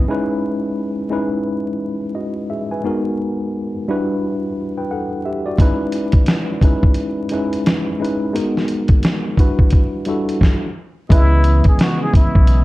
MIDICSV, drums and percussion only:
0, 0, Header, 1, 2, 480
1, 0, Start_track
1, 0, Key_signature, 4, "minor"
1, 0, Tempo, 689655
1, 44, Time_signature, 4, 2, 24, 8
1, 8800, End_track
2, 0, Start_track
2, 0, Title_t, "Drums"
2, 3887, Note_on_c, 9, 36, 94
2, 3895, Note_on_c, 9, 42, 84
2, 3956, Note_off_c, 9, 36, 0
2, 3965, Note_off_c, 9, 42, 0
2, 4123, Note_on_c, 9, 42, 64
2, 4192, Note_off_c, 9, 42, 0
2, 4261, Note_on_c, 9, 42, 40
2, 4268, Note_on_c, 9, 36, 82
2, 4331, Note_off_c, 9, 42, 0
2, 4338, Note_off_c, 9, 36, 0
2, 4359, Note_on_c, 9, 42, 72
2, 4372, Note_on_c, 9, 38, 102
2, 4428, Note_off_c, 9, 42, 0
2, 4442, Note_off_c, 9, 38, 0
2, 4604, Note_on_c, 9, 36, 84
2, 4611, Note_on_c, 9, 42, 63
2, 4673, Note_off_c, 9, 36, 0
2, 4681, Note_off_c, 9, 42, 0
2, 4754, Note_on_c, 9, 36, 92
2, 4823, Note_off_c, 9, 36, 0
2, 4832, Note_on_c, 9, 42, 70
2, 4902, Note_off_c, 9, 42, 0
2, 5074, Note_on_c, 9, 42, 48
2, 5144, Note_off_c, 9, 42, 0
2, 5239, Note_on_c, 9, 42, 49
2, 5309, Note_off_c, 9, 42, 0
2, 5333, Note_on_c, 9, 42, 80
2, 5338, Note_on_c, 9, 38, 94
2, 5402, Note_off_c, 9, 42, 0
2, 5407, Note_off_c, 9, 38, 0
2, 5600, Note_on_c, 9, 42, 46
2, 5669, Note_off_c, 9, 42, 0
2, 5816, Note_on_c, 9, 42, 78
2, 5886, Note_off_c, 9, 42, 0
2, 5967, Note_on_c, 9, 38, 33
2, 6036, Note_off_c, 9, 38, 0
2, 6042, Note_on_c, 9, 42, 62
2, 6111, Note_off_c, 9, 42, 0
2, 6181, Note_on_c, 9, 42, 39
2, 6187, Note_on_c, 9, 36, 80
2, 6251, Note_off_c, 9, 42, 0
2, 6256, Note_off_c, 9, 36, 0
2, 6283, Note_on_c, 9, 42, 77
2, 6297, Note_on_c, 9, 38, 97
2, 6353, Note_off_c, 9, 42, 0
2, 6366, Note_off_c, 9, 38, 0
2, 6524, Note_on_c, 9, 36, 81
2, 6535, Note_on_c, 9, 42, 59
2, 6594, Note_off_c, 9, 36, 0
2, 6604, Note_off_c, 9, 42, 0
2, 6674, Note_on_c, 9, 36, 81
2, 6743, Note_off_c, 9, 36, 0
2, 6754, Note_on_c, 9, 42, 66
2, 6770, Note_on_c, 9, 36, 77
2, 6824, Note_off_c, 9, 42, 0
2, 6840, Note_off_c, 9, 36, 0
2, 6996, Note_on_c, 9, 42, 46
2, 7066, Note_off_c, 9, 42, 0
2, 7161, Note_on_c, 9, 42, 49
2, 7230, Note_off_c, 9, 42, 0
2, 7246, Note_on_c, 9, 36, 94
2, 7260, Note_on_c, 9, 38, 77
2, 7315, Note_off_c, 9, 36, 0
2, 7330, Note_off_c, 9, 38, 0
2, 7727, Note_on_c, 9, 36, 115
2, 7737, Note_on_c, 9, 42, 99
2, 7796, Note_off_c, 9, 36, 0
2, 7806, Note_off_c, 9, 42, 0
2, 7962, Note_on_c, 9, 42, 68
2, 8032, Note_off_c, 9, 42, 0
2, 8103, Note_on_c, 9, 42, 40
2, 8108, Note_on_c, 9, 36, 90
2, 8172, Note_off_c, 9, 42, 0
2, 8178, Note_off_c, 9, 36, 0
2, 8206, Note_on_c, 9, 42, 77
2, 8219, Note_on_c, 9, 38, 108
2, 8275, Note_off_c, 9, 42, 0
2, 8289, Note_off_c, 9, 38, 0
2, 8446, Note_on_c, 9, 36, 93
2, 8457, Note_on_c, 9, 42, 65
2, 8516, Note_off_c, 9, 36, 0
2, 8527, Note_off_c, 9, 42, 0
2, 8597, Note_on_c, 9, 36, 99
2, 8666, Note_off_c, 9, 36, 0
2, 8681, Note_on_c, 9, 42, 72
2, 8751, Note_off_c, 9, 42, 0
2, 8800, End_track
0, 0, End_of_file